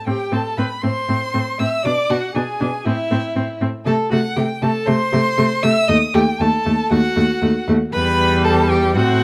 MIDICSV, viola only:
0, 0, Header, 1, 2, 480
1, 0, Start_track
1, 0, Tempo, 505902
1, 1753, Time_signature, 4, 2, 24, 8
1, 5587, Tempo, 512821
1, 8720, End_track
2, 0, Start_track
2, 0, Title_t, "Viola"
2, 0, Program_c, 0, 41
2, 63, Note_on_c, 0, 60, 55
2, 139, Note_off_c, 0, 60, 0
2, 303, Note_on_c, 0, 60, 59
2, 379, Note_off_c, 0, 60, 0
2, 546, Note_on_c, 0, 60, 59
2, 622, Note_off_c, 0, 60, 0
2, 788, Note_on_c, 0, 60, 54
2, 864, Note_off_c, 0, 60, 0
2, 1029, Note_on_c, 0, 60, 55
2, 1105, Note_off_c, 0, 60, 0
2, 1268, Note_on_c, 0, 60, 55
2, 1344, Note_off_c, 0, 60, 0
2, 1510, Note_on_c, 0, 60, 56
2, 1586, Note_off_c, 0, 60, 0
2, 1754, Note_on_c, 0, 62, 65
2, 1830, Note_off_c, 0, 62, 0
2, 1991, Note_on_c, 0, 62, 53
2, 2067, Note_off_c, 0, 62, 0
2, 2227, Note_on_c, 0, 62, 63
2, 2303, Note_off_c, 0, 62, 0
2, 2468, Note_on_c, 0, 62, 59
2, 2544, Note_off_c, 0, 62, 0
2, 2712, Note_on_c, 0, 60, 60
2, 2788, Note_off_c, 0, 60, 0
2, 2948, Note_on_c, 0, 60, 67
2, 3024, Note_off_c, 0, 60, 0
2, 3187, Note_on_c, 0, 60, 62
2, 3263, Note_off_c, 0, 60, 0
2, 3426, Note_on_c, 0, 60, 62
2, 3502, Note_off_c, 0, 60, 0
2, 3665, Note_on_c, 0, 57, 66
2, 3741, Note_off_c, 0, 57, 0
2, 3906, Note_on_c, 0, 57, 67
2, 3982, Note_off_c, 0, 57, 0
2, 4146, Note_on_c, 0, 57, 62
2, 4222, Note_off_c, 0, 57, 0
2, 4386, Note_on_c, 0, 57, 61
2, 4462, Note_off_c, 0, 57, 0
2, 4622, Note_on_c, 0, 57, 69
2, 4698, Note_off_c, 0, 57, 0
2, 4864, Note_on_c, 0, 57, 72
2, 4940, Note_off_c, 0, 57, 0
2, 5101, Note_on_c, 0, 57, 70
2, 5177, Note_off_c, 0, 57, 0
2, 5344, Note_on_c, 0, 57, 79
2, 5420, Note_off_c, 0, 57, 0
2, 5580, Note_on_c, 0, 57, 67
2, 5655, Note_off_c, 0, 57, 0
2, 5823, Note_on_c, 0, 57, 74
2, 5898, Note_off_c, 0, 57, 0
2, 6066, Note_on_c, 0, 57, 77
2, 6141, Note_off_c, 0, 57, 0
2, 6303, Note_on_c, 0, 57, 69
2, 6378, Note_off_c, 0, 57, 0
2, 6541, Note_on_c, 0, 57, 67
2, 6616, Note_off_c, 0, 57, 0
2, 6780, Note_on_c, 0, 57, 68
2, 6854, Note_off_c, 0, 57, 0
2, 7017, Note_on_c, 0, 57, 65
2, 7092, Note_off_c, 0, 57, 0
2, 7262, Note_on_c, 0, 57, 74
2, 7337, Note_off_c, 0, 57, 0
2, 7495, Note_on_c, 0, 55, 77
2, 8463, Note_on_c, 0, 60, 73
2, 8477, Note_off_c, 0, 55, 0
2, 8720, Note_off_c, 0, 60, 0
2, 8720, End_track
0, 0, End_of_file